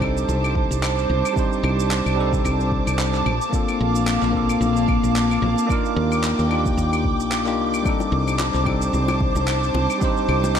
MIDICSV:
0, 0, Header, 1, 5, 480
1, 0, Start_track
1, 0, Tempo, 540541
1, 1215, Time_signature, 4, 2, 24, 8
1, 9411, End_track
2, 0, Start_track
2, 0, Title_t, "Analog synth pad"
2, 0, Program_c, 0, 89
2, 0, Note_on_c, 0, 72, 86
2, 0, Note_on_c, 0, 81, 79
2, 0, Note_on_c, 0, 86, 96
2, 2863, Note_off_c, 0, 72, 0
2, 2895, Note_on_c, 0, 58, 85
2, 2897, Note_on_c, 0, 77, 75
2, 5022, Note_off_c, 0, 81, 0
2, 5034, Note_off_c, 0, 77, 0
2, 5064, Note_on_c, 0, 79, 82
2, 6939, Note_off_c, 0, 58, 0
2, 6960, Note_off_c, 0, 79, 0
2, 6973, Note_on_c, 0, 81, 78
2, 6976, Note_on_c, 0, 72, 84
2, 9411, Note_off_c, 0, 72, 0
2, 9411, Note_off_c, 0, 81, 0
2, 9411, Note_off_c, 0, 86, 0
2, 9411, End_track
3, 0, Start_track
3, 0, Title_t, "Tine electric piano"
3, 0, Program_c, 1, 4
3, 0, Control_c, 1, 64, 127
3, 0, Note_on_c, 1, 55, 77
3, 0, Note_on_c, 1, 60, 71
3, 0, Note_on_c, 1, 62, 70
3, 0, Note_on_c, 1, 63, 72
3, 0, Note_on_c, 1, 69, 93
3, 11, Note_off_c, 1, 62, 0
3, 11, Note_on_c, 1, 62, 72
3, 26, Note_off_c, 1, 63, 0
3, 26, Note_on_c, 1, 63, 70
3, 38, Note_off_c, 1, 69, 0
3, 38, Note_on_c, 1, 69, 84
3, 1171, Note_off_c, 1, 55, 0
3, 1182, Note_off_c, 1, 60, 0
3, 1182, Note_on_c, 1, 55, 89
3, 1188, Note_off_c, 1, 62, 0
3, 1195, Note_off_c, 1, 63, 0
3, 1195, Note_on_c, 1, 60, 78
3, 1201, Note_off_c, 1, 69, 0
3, 1208, Note_on_c, 1, 62, 84
3, 1222, Note_on_c, 1, 63, 78
3, 1236, Note_on_c, 1, 72, 101
3, 1893, Note_off_c, 1, 55, 0
3, 1900, Note_off_c, 1, 60, 0
3, 1903, Note_on_c, 1, 55, 83
3, 1906, Note_off_c, 1, 62, 0
3, 1913, Note_off_c, 1, 63, 0
3, 1916, Note_on_c, 1, 60, 77
3, 1920, Note_off_c, 1, 72, 0
3, 1931, Note_on_c, 1, 62, 79
3, 1943, Note_on_c, 1, 63, 74
3, 1956, Note_on_c, 1, 69, 96
3, 2866, Note_off_c, 1, 55, 0
3, 2873, Note_off_c, 1, 60, 0
3, 2880, Note_off_c, 1, 62, 0
3, 2886, Note_off_c, 1, 63, 0
3, 2892, Note_off_c, 1, 69, 0
3, 2906, Control_c, 1, 64, 0
3, 3045, Control_c, 1, 64, 127
3, 3104, Note_on_c, 1, 58, 84
3, 3118, Note_on_c, 1, 60, 82
3, 3131, Note_on_c, 1, 62, 80
3, 3144, Note_on_c, 1, 65, 80
3, 3157, Note_on_c, 1, 69, 92
3, 3814, Note_off_c, 1, 58, 0
3, 3821, Note_off_c, 1, 60, 0
3, 3824, Note_on_c, 1, 58, 81
3, 3828, Note_off_c, 1, 62, 0
3, 3834, Note_off_c, 1, 65, 0
3, 3837, Note_on_c, 1, 60, 70
3, 3840, Note_off_c, 1, 69, 0
3, 3853, Note_on_c, 1, 62, 71
3, 3867, Note_on_c, 1, 65, 74
3, 3879, Note_on_c, 1, 69, 88
3, 5014, Note_off_c, 1, 58, 0
3, 5021, Note_off_c, 1, 60, 0
3, 5029, Note_off_c, 1, 62, 0
3, 5030, Note_on_c, 1, 58, 94
3, 5036, Note_off_c, 1, 65, 0
3, 5041, Note_off_c, 1, 69, 0
3, 5044, Note_on_c, 1, 62, 85
3, 5056, Note_on_c, 1, 63, 80
3, 5067, Control_c, 1, 64, 0
3, 5071, Note_on_c, 1, 65, 80
3, 5083, Note_on_c, 1, 70, 105
3, 5203, Control_c, 1, 64, 127
3, 5737, Note_off_c, 1, 58, 0
3, 5744, Note_off_c, 1, 62, 0
3, 5750, Note_off_c, 1, 63, 0
3, 5752, Note_on_c, 1, 58, 82
3, 5757, Note_off_c, 1, 65, 0
3, 5764, Note_off_c, 1, 70, 0
3, 5765, Note_on_c, 1, 62, 75
3, 5778, Note_on_c, 1, 63, 71
3, 5792, Note_on_c, 1, 65, 74
3, 5804, Note_on_c, 1, 67, 93
3, 6591, Note_off_c, 1, 58, 0
3, 6598, Note_off_c, 1, 62, 0
3, 6604, Note_off_c, 1, 63, 0
3, 6611, Note_off_c, 1, 65, 0
3, 6616, Note_on_c, 1, 58, 81
3, 6617, Note_off_c, 1, 67, 0
3, 6621, Note_on_c, 1, 62, 71
3, 6627, Note_on_c, 1, 63, 73
3, 6636, Note_on_c, 1, 65, 68
3, 6641, Note_on_c, 1, 67, 90
3, 6942, Note_off_c, 1, 58, 0
3, 6945, Note_off_c, 1, 62, 0
3, 6946, Note_on_c, 1, 55, 84
3, 6948, Note_off_c, 1, 63, 0
3, 6952, Note_off_c, 1, 65, 0
3, 6955, Note_off_c, 1, 67, 0
3, 6959, Note_on_c, 1, 60, 72
3, 6973, Note_on_c, 1, 62, 73
3, 6987, Control_c, 1, 64, 0
3, 6987, Note_on_c, 1, 63, 77
3, 7000, Note_on_c, 1, 69, 97
3, 7126, Control_c, 1, 64, 127
3, 7655, Note_off_c, 1, 55, 0
3, 7661, Note_off_c, 1, 60, 0
3, 7666, Note_on_c, 1, 55, 77
3, 7669, Note_off_c, 1, 62, 0
3, 7675, Note_off_c, 1, 63, 0
3, 7679, Note_on_c, 1, 60, 77
3, 7682, Note_off_c, 1, 69, 0
3, 7693, Note_on_c, 1, 62, 73
3, 7705, Note_on_c, 1, 63, 72
3, 7719, Note_on_c, 1, 69, 86
3, 8853, Note_off_c, 1, 55, 0
3, 8861, Note_off_c, 1, 60, 0
3, 8864, Note_on_c, 1, 55, 85
3, 8869, Note_off_c, 1, 62, 0
3, 8875, Note_off_c, 1, 63, 0
3, 8878, Note_on_c, 1, 60, 86
3, 8881, Note_off_c, 1, 69, 0
3, 8891, Note_on_c, 1, 62, 80
3, 8905, Note_on_c, 1, 63, 82
3, 8918, Note_on_c, 1, 72, 99
3, 9411, Note_off_c, 1, 55, 0
3, 9411, Note_off_c, 1, 60, 0
3, 9411, Note_off_c, 1, 62, 0
3, 9411, Note_off_c, 1, 63, 0
3, 9411, Note_off_c, 1, 72, 0
3, 9411, End_track
4, 0, Start_track
4, 0, Title_t, "Fretless electric bass"
4, 0, Program_c, 2, 35
4, 0, Note_on_c, 2, 36, 72
4, 219, Note_off_c, 2, 36, 0
4, 253, Note_on_c, 2, 36, 84
4, 585, Note_off_c, 2, 36, 0
4, 628, Note_on_c, 2, 36, 78
4, 940, Note_off_c, 2, 36, 0
4, 973, Note_on_c, 2, 36, 86
4, 1081, Note_off_c, 2, 36, 0
4, 1451, Note_on_c, 2, 36, 100
4, 1784, Note_off_c, 2, 36, 0
4, 1829, Note_on_c, 2, 36, 74
4, 2140, Note_off_c, 2, 36, 0
4, 2171, Note_on_c, 2, 36, 94
4, 2504, Note_off_c, 2, 36, 0
4, 2549, Note_on_c, 2, 36, 76
4, 2860, Note_off_c, 2, 36, 0
4, 2895, Note_on_c, 2, 34, 89
4, 3002, Note_off_c, 2, 34, 0
4, 3379, Note_on_c, 2, 34, 94
4, 3708, Note_off_c, 2, 34, 0
4, 3748, Note_on_c, 2, 34, 75
4, 4059, Note_off_c, 2, 34, 0
4, 4090, Note_on_c, 2, 34, 87
4, 4423, Note_off_c, 2, 34, 0
4, 4470, Note_on_c, 2, 34, 79
4, 4781, Note_off_c, 2, 34, 0
4, 4813, Note_on_c, 2, 34, 91
4, 4921, Note_off_c, 2, 34, 0
4, 5296, Note_on_c, 2, 39, 98
4, 5626, Note_off_c, 2, 39, 0
4, 5673, Note_on_c, 2, 39, 78
4, 5982, Note_off_c, 2, 39, 0
4, 6016, Note_on_c, 2, 39, 89
4, 6390, Note_off_c, 2, 39, 0
4, 6390, Note_on_c, 2, 34, 85
4, 6734, Note_off_c, 2, 34, 0
4, 6734, Note_on_c, 2, 36, 76
4, 7065, Note_off_c, 2, 36, 0
4, 7210, Note_on_c, 2, 36, 96
4, 7543, Note_off_c, 2, 36, 0
4, 7586, Note_on_c, 2, 36, 75
4, 7899, Note_off_c, 2, 36, 0
4, 7932, Note_on_c, 2, 36, 92
4, 8265, Note_off_c, 2, 36, 0
4, 8304, Note_on_c, 2, 36, 78
4, 8618, Note_off_c, 2, 36, 0
4, 8652, Note_on_c, 2, 36, 92
4, 8761, Note_off_c, 2, 36, 0
4, 9133, Note_on_c, 2, 36, 95
4, 9411, Note_off_c, 2, 36, 0
4, 9411, End_track
5, 0, Start_track
5, 0, Title_t, "Drums"
5, 12, Note_on_c, 9, 36, 52
5, 16, Note_on_c, 9, 75, 76
5, 101, Note_off_c, 9, 36, 0
5, 105, Note_off_c, 9, 75, 0
5, 155, Note_on_c, 9, 82, 58
5, 244, Note_off_c, 9, 82, 0
5, 260, Note_on_c, 9, 82, 48
5, 348, Note_off_c, 9, 82, 0
5, 394, Note_on_c, 9, 75, 76
5, 397, Note_on_c, 9, 82, 32
5, 482, Note_off_c, 9, 75, 0
5, 485, Note_off_c, 9, 82, 0
5, 491, Note_on_c, 9, 36, 96
5, 580, Note_off_c, 9, 36, 0
5, 637, Note_on_c, 9, 82, 65
5, 725, Note_off_c, 9, 82, 0
5, 739, Note_on_c, 9, 39, 95
5, 739, Note_on_c, 9, 75, 74
5, 742, Note_on_c, 9, 82, 52
5, 827, Note_off_c, 9, 39, 0
5, 827, Note_off_c, 9, 75, 0
5, 830, Note_off_c, 9, 82, 0
5, 875, Note_on_c, 9, 82, 30
5, 964, Note_off_c, 9, 82, 0
5, 1112, Note_on_c, 9, 75, 79
5, 1115, Note_on_c, 9, 82, 60
5, 1201, Note_off_c, 9, 75, 0
5, 1204, Note_off_c, 9, 82, 0
5, 1211, Note_on_c, 9, 36, 111
5, 1220, Note_on_c, 9, 82, 56
5, 1300, Note_off_c, 9, 36, 0
5, 1309, Note_off_c, 9, 82, 0
5, 1355, Note_on_c, 9, 82, 30
5, 1444, Note_off_c, 9, 82, 0
5, 1457, Note_on_c, 9, 75, 68
5, 1546, Note_off_c, 9, 75, 0
5, 1597, Note_on_c, 9, 82, 64
5, 1686, Note_off_c, 9, 82, 0
5, 1697, Note_on_c, 9, 39, 100
5, 1700, Note_on_c, 9, 82, 52
5, 1786, Note_off_c, 9, 39, 0
5, 1789, Note_off_c, 9, 82, 0
5, 1831, Note_on_c, 9, 75, 72
5, 1834, Note_on_c, 9, 82, 33
5, 1920, Note_off_c, 9, 75, 0
5, 1923, Note_off_c, 9, 82, 0
5, 2067, Note_on_c, 9, 36, 99
5, 2074, Note_on_c, 9, 82, 60
5, 2156, Note_off_c, 9, 36, 0
5, 2163, Note_off_c, 9, 82, 0
5, 2177, Note_on_c, 9, 75, 70
5, 2180, Note_on_c, 9, 82, 53
5, 2266, Note_off_c, 9, 75, 0
5, 2269, Note_off_c, 9, 82, 0
5, 2315, Note_on_c, 9, 82, 32
5, 2403, Note_off_c, 9, 82, 0
5, 2412, Note_on_c, 9, 36, 61
5, 2501, Note_off_c, 9, 36, 0
5, 2550, Note_on_c, 9, 75, 79
5, 2553, Note_on_c, 9, 82, 65
5, 2639, Note_off_c, 9, 75, 0
5, 2642, Note_off_c, 9, 82, 0
5, 2654, Note_on_c, 9, 39, 95
5, 2658, Note_on_c, 9, 82, 55
5, 2743, Note_off_c, 9, 39, 0
5, 2746, Note_off_c, 9, 82, 0
5, 2792, Note_on_c, 9, 39, 31
5, 2795, Note_on_c, 9, 82, 31
5, 2880, Note_off_c, 9, 39, 0
5, 2884, Note_off_c, 9, 82, 0
5, 2895, Note_on_c, 9, 75, 73
5, 2984, Note_off_c, 9, 75, 0
5, 3033, Note_on_c, 9, 82, 65
5, 3121, Note_off_c, 9, 82, 0
5, 3132, Note_on_c, 9, 36, 108
5, 3139, Note_on_c, 9, 82, 53
5, 3221, Note_off_c, 9, 36, 0
5, 3227, Note_off_c, 9, 82, 0
5, 3272, Note_on_c, 9, 75, 67
5, 3275, Note_on_c, 9, 82, 34
5, 3361, Note_off_c, 9, 75, 0
5, 3364, Note_off_c, 9, 82, 0
5, 3514, Note_on_c, 9, 82, 69
5, 3602, Note_off_c, 9, 82, 0
5, 3617, Note_on_c, 9, 39, 100
5, 3617, Note_on_c, 9, 75, 70
5, 3620, Note_on_c, 9, 82, 56
5, 3706, Note_off_c, 9, 39, 0
5, 3706, Note_off_c, 9, 75, 0
5, 3709, Note_off_c, 9, 82, 0
5, 3754, Note_on_c, 9, 39, 30
5, 3757, Note_on_c, 9, 82, 33
5, 3842, Note_off_c, 9, 39, 0
5, 3845, Note_off_c, 9, 82, 0
5, 3854, Note_on_c, 9, 36, 57
5, 3943, Note_off_c, 9, 36, 0
5, 3991, Note_on_c, 9, 75, 68
5, 3994, Note_on_c, 9, 82, 66
5, 4080, Note_off_c, 9, 75, 0
5, 4083, Note_off_c, 9, 82, 0
5, 4100, Note_on_c, 9, 82, 56
5, 4189, Note_off_c, 9, 82, 0
5, 4234, Note_on_c, 9, 82, 35
5, 4323, Note_off_c, 9, 82, 0
5, 4335, Note_on_c, 9, 36, 108
5, 4338, Note_on_c, 9, 75, 66
5, 4424, Note_off_c, 9, 36, 0
5, 4427, Note_off_c, 9, 75, 0
5, 4476, Note_on_c, 9, 82, 71
5, 4565, Note_off_c, 9, 82, 0
5, 4583, Note_on_c, 9, 39, 93
5, 4586, Note_on_c, 9, 82, 53
5, 4671, Note_off_c, 9, 39, 0
5, 4674, Note_off_c, 9, 82, 0
5, 4718, Note_on_c, 9, 75, 68
5, 4721, Note_on_c, 9, 82, 30
5, 4806, Note_off_c, 9, 75, 0
5, 4809, Note_off_c, 9, 82, 0
5, 4959, Note_on_c, 9, 82, 66
5, 5048, Note_off_c, 9, 82, 0
5, 5057, Note_on_c, 9, 36, 108
5, 5063, Note_on_c, 9, 75, 70
5, 5066, Note_on_c, 9, 82, 56
5, 5145, Note_off_c, 9, 36, 0
5, 5152, Note_off_c, 9, 75, 0
5, 5155, Note_off_c, 9, 82, 0
5, 5198, Note_on_c, 9, 82, 31
5, 5286, Note_off_c, 9, 82, 0
5, 5433, Note_on_c, 9, 75, 67
5, 5436, Note_on_c, 9, 82, 66
5, 5522, Note_off_c, 9, 75, 0
5, 5525, Note_off_c, 9, 82, 0
5, 5538, Note_on_c, 9, 39, 93
5, 5541, Note_on_c, 9, 82, 55
5, 5626, Note_off_c, 9, 39, 0
5, 5629, Note_off_c, 9, 82, 0
5, 5675, Note_on_c, 9, 82, 33
5, 5764, Note_off_c, 9, 82, 0
5, 5778, Note_on_c, 9, 75, 68
5, 5867, Note_off_c, 9, 75, 0
5, 5911, Note_on_c, 9, 36, 102
5, 5917, Note_on_c, 9, 82, 61
5, 6000, Note_off_c, 9, 36, 0
5, 6006, Note_off_c, 9, 82, 0
5, 6022, Note_on_c, 9, 82, 51
5, 6111, Note_off_c, 9, 82, 0
5, 6154, Note_on_c, 9, 75, 73
5, 6157, Note_on_c, 9, 82, 35
5, 6243, Note_off_c, 9, 75, 0
5, 6246, Note_off_c, 9, 82, 0
5, 6255, Note_on_c, 9, 36, 61
5, 6344, Note_off_c, 9, 36, 0
5, 6394, Note_on_c, 9, 82, 67
5, 6483, Note_off_c, 9, 82, 0
5, 6498, Note_on_c, 9, 39, 93
5, 6498, Note_on_c, 9, 75, 66
5, 6501, Note_on_c, 9, 82, 53
5, 6587, Note_off_c, 9, 39, 0
5, 6587, Note_off_c, 9, 75, 0
5, 6590, Note_off_c, 9, 82, 0
5, 6629, Note_on_c, 9, 39, 28
5, 6632, Note_on_c, 9, 82, 33
5, 6718, Note_off_c, 9, 39, 0
5, 6721, Note_off_c, 9, 82, 0
5, 6871, Note_on_c, 9, 75, 73
5, 6874, Note_on_c, 9, 82, 70
5, 6960, Note_off_c, 9, 75, 0
5, 6963, Note_off_c, 9, 82, 0
5, 6974, Note_on_c, 9, 36, 106
5, 6976, Note_on_c, 9, 75, 74
5, 6979, Note_on_c, 9, 82, 52
5, 7062, Note_off_c, 9, 36, 0
5, 7065, Note_off_c, 9, 75, 0
5, 7068, Note_off_c, 9, 82, 0
5, 7106, Note_on_c, 9, 60, 50
5, 7115, Note_on_c, 9, 82, 29
5, 7195, Note_off_c, 9, 60, 0
5, 7203, Note_off_c, 9, 82, 0
5, 7350, Note_on_c, 9, 75, 68
5, 7353, Note_on_c, 9, 82, 63
5, 7439, Note_off_c, 9, 75, 0
5, 7442, Note_off_c, 9, 82, 0
5, 7453, Note_on_c, 9, 60, 68
5, 7454, Note_on_c, 9, 39, 95
5, 7457, Note_on_c, 9, 82, 52
5, 7542, Note_off_c, 9, 39, 0
5, 7542, Note_off_c, 9, 60, 0
5, 7545, Note_off_c, 9, 82, 0
5, 7587, Note_on_c, 9, 39, 27
5, 7590, Note_on_c, 9, 82, 34
5, 7676, Note_off_c, 9, 39, 0
5, 7679, Note_off_c, 9, 82, 0
5, 7692, Note_on_c, 9, 75, 76
5, 7693, Note_on_c, 9, 36, 56
5, 7697, Note_on_c, 9, 60, 52
5, 7781, Note_off_c, 9, 75, 0
5, 7782, Note_off_c, 9, 36, 0
5, 7786, Note_off_c, 9, 60, 0
5, 7831, Note_on_c, 9, 82, 62
5, 7919, Note_off_c, 9, 82, 0
5, 7937, Note_on_c, 9, 82, 52
5, 8026, Note_off_c, 9, 82, 0
5, 8066, Note_on_c, 9, 60, 76
5, 8069, Note_on_c, 9, 75, 67
5, 8072, Note_on_c, 9, 82, 32
5, 8155, Note_off_c, 9, 60, 0
5, 8158, Note_off_c, 9, 75, 0
5, 8161, Note_off_c, 9, 82, 0
5, 8174, Note_on_c, 9, 36, 100
5, 8263, Note_off_c, 9, 36, 0
5, 8311, Note_on_c, 9, 82, 69
5, 8313, Note_on_c, 9, 60, 49
5, 8400, Note_off_c, 9, 82, 0
5, 8401, Note_off_c, 9, 60, 0
5, 8416, Note_on_c, 9, 39, 89
5, 8416, Note_on_c, 9, 75, 71
5, 8419, Note_on_c, 9, 82, 49
5, 8504, Note_off_c, 9, 39, 0
5, 8504, Note_off_c, 9, 75, 0
5, 8507, Note_off_c, 9, 82, 0
5, 8557, Note_on_c, 9, 82, 30
5, 8645, Note_off_c, 9, 82, 0
5, 8654, Note_on_c, 9, 60, 77
5, 8743, Note_off_c, 9, 60, 0
5, 8790, Note_on_c, 9, 75, 71
5, 8793, Note_on_c, 9, 82, 66
5, 8879, Note_off_c, 9, 75, 0
5, 8882, Note_off_c, 9, 82, 0
5, 8891, Note_on_c, 9, 60, 47
5, 8895, Note_on_c, 9, 36, 104
5, 8897, Note_on_c, 9, 82, 51
5, 8980, Note_off_c, 9, 60, 0
5, 8983, Note_off_c, 9, 36, 0
5, 8985, Note_off_c, 9, 82, 0
5, 9033, Note_on_c, 9, 82, 28
5, 9122, Note_off_c, 9, 82, 0
5, 9135, Note_on_c, 9, 75, 72
5, 9224, Note_off_c, 9, 75, 0
5, 9268, Note_on_c, 9, 60, 75
5, 9274, Note_on_c, 9, 82, 63
5, 9356, Note_off_c, 9, 60, 0
5, 9363, Note_off_c, 9, 82, 0
5, 9376, Note_on_c, 9, 39, 93
5, 9379, Note_on_c, 9, 82, 50
5, 9411, Note_off_c, 9, 39, 0
5, 9411, Note_off_c, 9, 82, 0
5, 9411, End_track
0, 0, End_of_file